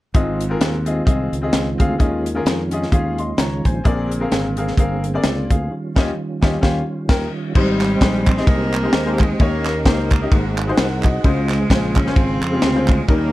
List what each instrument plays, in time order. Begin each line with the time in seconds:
0.14 fingered electric bass G#1, upright piano G#2 C4 F4 G#4 D#5, tonewheel organ D#3 G#3 C4 F4, kick, closed hi-hat
0.41 closed hi-hat
0.49 upright piano C4 F4 G#4 A#4
0.60 fingered electric bass D#2, snare, closed hi-hat
0.85 upright piano C4 F4 G#4 D#5, closed hi-hat
1.05 fingered electric bass C2, upright piano C4 F4 G#4 D#5, kick, closed hi-hat
1.33 fingered electric bass C#2, closed hi-hat
1.42 upright piano C4 F4 G#4 D#5
1.53 fingered electric bass C#2, snare, closed hi-hat
1.78 fingered electric bass D2, upright piano C4 F4 G#4 F5, kick, closed hi-hat
1.98 fingered electric bass D#2, upright piano D#3 C#4 F4 G#4 D#5, tonewheel organ C#4, kick, closed hi-hat
2.26 closed hi-hat
2.35 upright piano C#4 F4 G#4 A#4
2.45 fingered electric bass F2, snare, closed hi-hat
2.71 upright piano C#4 F4 G#4 D#5, closed hi-hat
2.83 snare
2.92 fingered electric bass D#2, upright piano C#4 F4 G#4 F5, kick, closed hi-hat
3.18 upright piano D#5 C6, closed hi-hat
3.38 fingered electric bass C#2, upright piano C#5 A#5, snare, closed hi-hat
3.65 fingered electric bass A#1, upright piano C5 G#5, kick, closed hi-hat
3.84 fingered electric bass A#1, upright piano A#2 C4 G#4 A#4 D5, tonewheel organ D3 A#3 C4 G#4, kick, closed hi-hat
4.11 closed hi-hat
4.20 upright piano C4 G#4 A#4 F5
4.31 fingered electric bass G#1, snare, closed hi-hat
4.57 upright piano C4 G#4 A#4 F5, closed hi-hat
4.68 snare
4.77 fingered electric bass G1, upright piano C4 G#4 A#4 F5, kick, closed hi-hat
5.04 closed hi-hat
5.14 upright piano C4 G#4 A#4 D5
5.24 fingered electric bass C#2, upright piano F4 D5, snare, closed hi-hat
5.50 fingered electric bass D2, upright piano G#4 F5, kick, closed hi-hat
5.71 tonewheel organ D#3 G3 C#4 F4
5.96 fingered electric bass D#2, upright piano C#4 F4 G4 D#5, kick, snare, crash
6.41 fingered electric bass D#2, upright piano C#4 F4 G4 D#5, kick, snare
6.61 fingered electric bass D#2, upright piano C#4 F4 G4 F5, kick, snare
7.09 fingered electric bass D#2, upright piano A#4 G5, kick, snare, crash
7.54 fingered electric bass G#1, upright piano G#2 G3 D#4 G4 C5, cello G3, tonewheel organ C4 G4 C5 D#5, kick, crash
7.81 snare, clap, ride
8.00 fingered electric bass A#1, upright piano G#3 D#4 G4 C5, kick, snare, ride
8.26 cello C4, kick, clap, ride
8.36 upright piano G#3 D#4 G4 D#5, snare
8.47 fingered electric bass C2, cello A#3, kick, ride
8.73 clap, ride
8.83 upright piano G#3 D#4 G4 C5
8.93 fingered electric bass D#2, snare, ride
9.05 upright piano G#3 D#4 G4 C5
9.19 cello G#3, kick, clap, ride
9.39 fingered electric bass D#2, upright piano D#3 A#3 D#4 G4 C#5, cello A#3, tonewheel organ C#4 A#4, kick, ride
9.65 snare, clap, ride
9.84 fingered electric bass C#2, upright piano A#3 D#4 G4 C5, cello A#3, kick, snare, ride
10.10 kick, clap, ride
10.21 upright piano A#3 D#4 G4 D#5
10.32 fingered electric bass G#1, upright piano G#2, tonewheel organ D#4 G#4 C5 F#5, kick, ride
10.58 clap, ride
10.67 upright piano G#3 D#4 F#4 C5
10.77 fingered electric bass C2, upright piano A#4 F#5, snare, ride
11.03 upright piano F#4 D#5, kick, clap, ride
11.24 fingered electric bass C#2, tonewheel organ C#3 F5, upright piano C#3 G#3 C#4 F4 C5, cello G#3, kick, ride
11.49 snare, clap, ride
11.69 fingered electric bass A#1, upright piano G#3 C#4 F4 C5, kick, snare, ride
11.96 cello C#4, kick, clap, ride
12.05 upright piano G#3 C#4 F4 C5, snare
12.16 fingered electric bass G#1, cello C4, kick, ride
12.42 fingered electric bass F2, clap, ride
12.51 upright piano G#3 C#4 F4 G4
12.62 fingered electric bass D2, snare, ride
12.74 upright piano G#3 C#4 F4 C5
12.88 cello G#3, kick, clap, ride
13.08 fingered electric bass D#2, upright piano D#3 G3 C#4 D#4 A#4, cello A#3, tonewheel organ D#4 A#4 C#5 G5, kick, ride